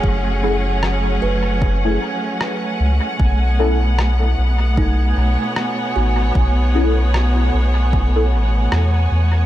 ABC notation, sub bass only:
X:1
M:4/4
L:1/8
Q:"Swing 16ths" 1/4=76
K:Bmix
V:1 name="Sub bass" clef=bass
F,,,3 F,,,2 z2 C,, | B,,,3 B,,,2 B,,, z A,,, | B,,,3 B,,,2 A,,, E,, E,, |]